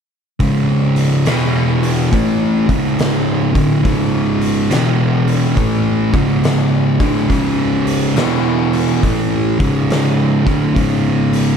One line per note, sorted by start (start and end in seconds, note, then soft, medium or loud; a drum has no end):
0.40 1.27 C#2 medium
0.40 1.28 G#2 medium
0.40 1.29 C#3 medium
0.40 kick medium
0.40 open hi-hat medium
0.96 open hi-hat soft
1.26 2.12 E2 medium
1.26 2.12 B2 medium
1.26 2.11 E3 loud
1.26 snare loud
1.26 open hi-hat medium
1.83 open hi-hat medium
2.12 2.67 A2 medium
2.12 2.67 E3 medium
2.12 2.68 A3 medium
2.12 kick medium
2.12 open hi-hat medium
2.68 3.53 C#2 medium
2.68 3.53 G#2 medium
2.68 3.54 C#3 medium
2.68 kick loud
2.68 open hi-hat medium
2.99 snare loud
2.99 open hi-hat medium
3.54 3.83 D2 medium
3.54 3.84 A2 medium
3.54 3.85 D3 loud
3.54 kick loud
3.54 open hi-hat soft
3.84 4.70 C#2 medium
3.84 4.71 G#2 medium
3.84 4.71 C#3 loud
3.84 kick loud
3.84 open hi-hat medium
4.42 open hi-hat soft
4.71 5.56 E2 medium
4.71 5.56 B2 medium
4.71 5.56 E3 medium
4.71 snare loud
4.71 open hi-hat medium
5.28 open hi-hat soft
5.57 6.12 A2 medium
5.57 6.12 E3 loud
5.57 6.13 A3 medium
5.57 kick medium
5.57 open hi-hat medium
6.13 6.98 C#2 medium
6.13 6.99 G#2 medium
6.13 6.99 C#3 medium
6.13 kick loud
6.13 open hi-hat soft
6.44 snare loud
6.44 open hi-hat medium
6.99 7.29 D2 medium
6.99 7.29 A2 medium
6.99 7.30 D3 medium
6.99 kick loud
6.99 open hi-hat medium
7.29 8.16 C#2 medium
7.29 8.16 G#2 medium
7.29 8.18 C#3 loud
7.29 kick medium
7.29 open hi-hat medium
7.87 open hi-hat medium
8.16 9.02 E2 medium
8.16 9.02 B2 medium
8.16 9.03 E3 medium
8.16 snare medium
8.16 open hi-hat medium
8.73 open hi-hat soft
9.03 9.58 A2 medium
9.03 9.58 E3 medium
9.03 9.58 A3 loud
9.03 kick medium
9.03 open hi-hat medium
9.59 10.44 C#2 medium
9.59 10.45 G#2 medium
9.59 10.45 C#3 medium
9.59 kick loud
9.59 open hi-hat medium
9.90 snare loud
9.90 open hi-hat medium
10.46 10.75 D2 medium
10.46 10.75 A2 medium
10.46 10.75 D3 medium
10.46 kick medium
10.46 open hi-hat soft
10.76 11.57 C#2 medium
10.76 11.57 G#2 loud
10.76 11.57 C#3 loud
10.76 kick loud
10.76 open hi-hat medium
11.33 open hi-hat soft